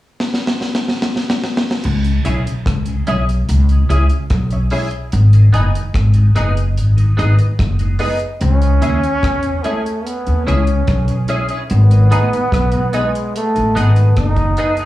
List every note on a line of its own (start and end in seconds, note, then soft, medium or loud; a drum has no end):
0.20 snare medium
0.34 snare medium
0.47 snare medium
0.61 snare medium
0.75 snare medium
0.88 snare medium
1.02 snare medium
1.16 snare medium
1.30 snare medium
1.44 snare medium
1.57 snare medium
1.71 snare medium
1.83 2.20 C#2 loud
1.83 crash medium
2.04 2.13 C#3 medium
2.04 closed hi-hat medium
2.25 2.43 B1 medium
2.25 2.34 G#3 medium
2.25 2.41 C#4 medium
2.25 2.34 C#4 medium
2.25 2.42 E4 medium
2.25 2.34 E4 medium
2.25 2.42 E4 medium
2.25 2.42 G#4 medium
2.25 2.43 C#5 medium
2.25 2.43 E5 loud
2.25 closed hi-hat medium
2.46 2.55 C#3 medium
2.46 closed hi-hat soft
2.66 3.02 C#2 medium
2.66 kick loud
2.66 cross-stick loud
2.66 closed hi-hat medium
2.86 2.96 C#3 medium
2.86 closed hi-hat medium
3.07 3.43 B1 medium
3.07 3.16 G#3 medium
3.07 3.23 C#4 medium
3.07 3.16 C#4 medium
3.07 3.24 E4 medium
3.07 3.17 E4 medium
3.07 3.25 G#4 medium
3.07 3.24 G#4 loud
3.07 3.25 C#5 medium
3.07 3.25 E5 loud
3.07 closed hi-hat medium
3.29 closed hi-hat soft
3.49 3.84 C#2 medium
3.49 closed hi-hat medium
3.69 3.78 C#3 medium
3.69 closed hi-hat soft
3.89 4.08 C#2 medium
3.89 3.99 G#3 medium
3.89 4.06 C#4 medium
3.89 3.99 C#4 medium
3.89 4.07 E4 medium
3.89 4.06 E4 medium
3.89 3.99 E4 medium
3.89 4.07 G#4 medium
3.89 4.06 G#4 medium
3.89 4.07 C#5 medium
3.89 4.07 E5 loud
3.89 closed hi-hat medium
4.10 4.19 C#3 medium
4.10 closed hi-hat soft
4.30 4.66 B1 medium
4.30 kick medium
4.30 cross-stick loud
4.30 closed hi-hat medium
4.50 4.60 C#3 medium
4.50 4.60 C#5 soft
4.50 4.60 E5 soft
4.50 closed hi-hat soft
4.70 4.81 G#3 medium
4.70 4.88 C#4 medium
4.70 4.81 C#4 medium
4.70 4.89 E4 medium
4.70 4.88 E4 medium
4.70 4.81 E4 medium
4.70 4.89 G#4 medium
4.70 4.88 G#4 medium
4.70 4.89 C#5 medium
4.70 4.89 E5 loud
4.70 open hi-hat medium
4.91 closed hi-hat soft
5.12 5.49 G#1 loud
5.12 closed hi-hat medium
5.33 5.42 G#2 medium
5.33 5.42 D#3 medium
5.33 closed hi-hat medium
5.53 5.72 F#1 medium
5.53 5.62 G#3 medium
5.53 5.69 B3 medium
5.53 5.62 B3 medium
5.53 5.70 D#4 medium
5.53 5.63 D#4 medium
5.53 5.71 D#4 medium
5.53 5.70 G#4 medium
5.53 5.71 G#4 medium
5.53 5.71 B4 medium
5.53 5.72 D#5 loud
5.53 closed hi-hat medium
5.73 5.83 G#2 medium
5.73 5.83 D#3 medium
5.73 closed hi-hat medium
5.94 6.30 G#1 medium
5.94 kick medium
5.94 cross-stick loud
5.94 closed hi-hat medium
6.14 6.24 G#2 medium
6.14 6.24 D#3 medium
6.14 closed hi-hat soft
6.35 6.77 F#1 medium
6.35 6.44 G#3 medium
6.35 6.44 B3 medium
6.35 6.52 B3 medium
6.35 6.45 D#4 medium
6.35 6.53 D#4 loud
6.35 6.52 D#4 medium
6.35 6.53 G#4 medium
6.35 6.53 G#4 loud
6.35 6.54 B4 medium
6.35 6.54 D#5 loud
6.35 cross-stick medium
6.35 closed hi-hat medium
6.57 closed hi-hat medium
6.77 7.13 G#1 medium
6.77 closed hi-hat medium
6.97 7.06 G#2 medium
6.97 7.06 D#3 medium
6.97 closed hi-hat soft
7.17 7.37 G#1 medium
7.17 7.26 G#3 medium
7.17 7.34 B3 medium
7.17 7.27 B3 medium
7.17 7.35 D#4 medium
7.17 7.27 D#4 medium
7.17 7.34 D#4 medium
7.17 7.35 G#4 medium
7.17 7.36 B4 medium
7.17 7.36 D#5 loud
7.17 closed hi-hat medium
7.38 7.47 G#2 medium
7.38 7.47 D#3 medium
7.38 7.47 B4 soft
7.38 7.47 D#5 soft
7.38 closed hi-hat soft
7.59 7.95 F#1 medium
7.59 kick loud
7.59 cross-stick medium
7.59 closed hi-hat medium
7.79 7.89 G#2 medium
7.79 7.89 D#3 medium
7.79 closed hi-hat soft
7.99 8.09 G#3 medium
7.99 8.16 B3 medium
7.99 8.09 B3 medium
7.99 8.17 D#4 loud
7.99 8.09 D#4 medium
7.99 8.16 D#4 medium
7.99 8.17 G#4 medium
7.99 8.18 B4 medium
7.99 8.18 D#5 loud
7.99 open hi-hat medium
8.20 closed hi-hat soft
8.41 8.77 C#2 loud
8.41 9.66 C#4 loud
8.41 closed hi-hat medium
8.62 8.71 C#3 medium
8.62 closed hi-hat medium
8.81 9.00 D#2 loud
8.81 8.91 G#3 medium
8.81 8.98 C#4 medium
8.81 8.91 C#4 medium
8.81 8.91 E4 medium
8.81 8.99 E4 medium
8.81 9.00 G#4 medium
8.81 8.99 G#4 medium
8.81 9.00 C#5 medium
8.81 9.00 E5 loud
8.81 closed hi-hat medium
9.03 9.12 C#3 medium
9.03 closed hi-hat medium
9.23 9.59 E2 medium
9.23 kick medium
9.23 cross-stick loud
9.23 closed hi-hat loud
9.43 9.53 C#3 medium
9.43 closed hi-hat medium
9.64 9.73 G#3 medium
9.64 10.06 A3 medium
9.64 9.74 C#4 medium
9.64 9.81 C#4 medium
9.64 9.74 E4 medium
9.64 9.82 E4 medium
9.64 9.81 E4 medium
9.64 9.82 G#4 medium
9.64 9.81 G#4 medium
9.64 9.82 C#5 medium
9.64 9.82 E5 medium
9.64 closed hi-hat medium
9.86 closed hi-hat soft
10.05 10.46 B3 medium
10.05 closed hi-hat medium
10.26 10.44 D#2 medium
10.26 10.35 C#3 medium
10.26 closed hi-hat soft
10.47 10.83 C#2 medium
10.47 10.56 G#3 medium
10.47 11.25 C#4 medium
10.47 10.63 C#4 medium
10.47 10.56 C#4 medium
10.47 10.64 E4 medium
10.47 10.56 E4 medium
10.47 10.63 E4 medium
10.47 10.64 G#4 medium
10.47 10.64 C#5 medium
10.47 10.65 E5 loud
10.47 closed hi-hat medium
10.67 10.76 C#3 medium
10.67 closed hi-hat soft
10.87 11.24 B1 medium
10.87 kick medium
10.87 cross-stick medium
10.87 closed hi-hat medium
11.08 11.17 C#3 medium
11.08 closed hi-hat soft
11.28 11.38 G#3 medium
11.28 11.38 C#4 medium
11.28 11.45 C#4 medium
11.28 11.46 E4 loud
11.28 11.38 E4 medium
11.28 11.46 E4 medium
11.28 11.46 G#4 medium
11.28 11.47 C#5 medium
11.28 11.47 E5 loud
11.28 closed hi-hat medium
11.49 11.58 C#4 medium
11.49 11.63 C#4 medium
11.49 11.59 E4 medium
11.49 11.62 E4 medium
11.49 11.62 G#4 medium
11.49 11.58 C#5 soft
11.49 11.58 E5 soft
11.49 closed hi-hat soft
11.70 12.06 G#1 loud
11.70 12.97 B3 loud
11.70 closed hi-hat medium
11.91 12.00 G#2 medium
11.91 12.00 D#3 medium
11.91 closed hi-hat soft
12.10 12.20 B3 medium
12.10 12.27 B3 medium
12.10 12.20 D#4 medium
12.10 12.29 D#4 loud
12.10 12.28 D#4 medium
12.10 12.20 G#4 medium
12.10 12.29 G#4 medium
12.10 12.28 G#4 medium
12.10 12.29 B4 medium
12.10 12.29 D#5 loud
12.10 closed hi-hat medium
12.32 12.41 G#2 medium
12.32 12.41 D#3 medium
12.32 closed hi-hat medium
12.52 12.88 B1 medium
12.52 kick loud
12.52 cross-stick loud
12.52 closed hi-hat loud
12.72 12.82 G#2 medium
12.72 12.82 D#3 medium
12.72 closed hi-hat soft
12.93 13.36 G#3 medium
12.93 13.02 B3 medium
12.93 13.10 B3 medium
12.93 13.02 D#4 medium
12.93 13.11 D#4 medium
12.93 13.10 D#4 medium
12.93 13.03 G#4 medium
12.93 13.11 G#4 medium
12.93 13.10 G#4 medium
12.93 13.11 B4 medium
12.93 13.11 D#5 loud
12.93 closed hi-hat medium
13.15 closed hi-hat medium
13.36 13.74 A3 medium
13.36 closed hi-hat medium
13.55 13.74 A1 medium
13.55 13.64 G#2 medium
13.55 13.64 D#3 medium
13.55 closed hi-hat soft
13.75 14.12 G#1 medium
13.75 13.92 B3 medium
13.75 13.85 B3 medium
13.75 14.15 B3 medium
13.75 13.92 D#4 medium
13.75 13.93 D#4 medium
13.75 13.85 D#4 medium
13.75 13.85 G#4 medium
13.75 13.93 G#4 medium
13.75 13.92 G#4 medium
13.75 13.94 B4 medium
13.75 13.94 D#5 loud
13.75 closed hi-hat medium
13.96 14.05 G#2 medium
13.96 14.05 D#3 medium
13.96 muted clean electric guitar stroke soft
13.96 closed hi-hat soft
14.17 14.53 F#1 medium
14.17 14.76 D#4 medium
14.17 kick medium
14.17 cross-stick loud
14.17 closed hi-hat medium
14.36 14.47 G#2 medium
14.36 14.47 D#3 medium
14.36 kick medium
14.36 closed hi-hat soft
14.57 14.74 B3 medium
14.57 14.67 B3 medium
14.57 14.75 D#4 medium
14.57 14.68 D#4 medium
14.57 14.76 G#4 medium
14.57 14.75 G#4 medium
14.57 14.68 G#4 medium
14.57 14.76 B4 medium
14.57 14.76 D#5 loud
14.57 closed hi-hat medium
14.77 14.85 B3 soft
14.77 14.85 D#4 medium
14.77 14.85 G#4 medium
14.77 closed hi-hat soft